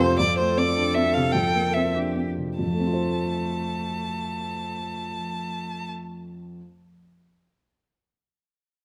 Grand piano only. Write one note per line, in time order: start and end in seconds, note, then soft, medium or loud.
0.00 0.14 F2 medium
0.00 0.20 C3 medium
0.00 0.20 A3 medium
0.00 0.20 C4 medium
0.00 0.20 F4 medium
0.19 1.31 F2 soft
0.39 0.69 A3 soft
0.57 0.88 C4 soft
0.76 0.95 D4 soft
0.95 1.26 C4 soft
1.17 1.35 C3 soft
1.34 2.55 F2 soft
1.54 1.86 A#3 soft
1.76 2.08 C4 soft
1.95 2.15 D4 soft
2.16 2.50 C4 soft
2.38 2.59 C3 soft
2.59 6.58 F2 soft
2.65 6.62 F3 soft
2.73 6.65 A3 soft
2.79 6.69 C4 soft
2.86 6.72 F4 soft
2.94 6.76 C5 soft